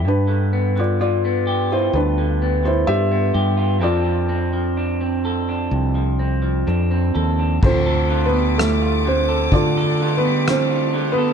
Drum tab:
CC |--------|--------|x-------|
RD |--------|--------|-xxxxxxx|
SD |--------|--------|--r---r-|
BD |--------|--------|o---o---|